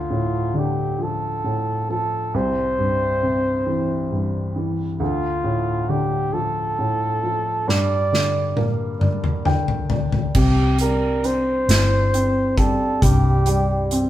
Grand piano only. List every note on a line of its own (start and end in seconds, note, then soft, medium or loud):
0.00 2.29 D2 medium
0.10 1.43 A2 soft
0.54 2.29 D3 soft
0.99 1.88 F3 soft
1.44 2.31 A2 soft
1.90 2.32 F3 soft
2.34 4.97 C2 medium
2.78 4.10 G2 soft
3.23 4.97 C3 soft
3.67 4.54 E3 soft
4.11 4.98 G2 soft
4.56 4.99 E3 soft
5.00 7.63 D2 medium
5.44 6.77 A2 soft
5.89 7.63 D3 soft
6.33 7.22 F3 soft
6.79 7.65 A2 soft
7.23 7.66 F3 soft
7.68 10.31 G2 medium
8.12 9.44 D3 soft
8.56 10.31 A#3 soft
8.99 9.89 D4 soft
9.45 10.32 D3 soft
9.45 10.31 G5 soft
9.91 10.34 D4 soft
10.35 12.98 C3 medium
10.81 12.54 G3 soft
11.24 12.13 C4 soft
11.70 13.43 E4 soft
12.14 13.88 C4 soft
12.59 13.45 G3 soft
13.04 14.10 G2 medium
13.47 14.10 G3 medium
13.92 14.10 C4 medium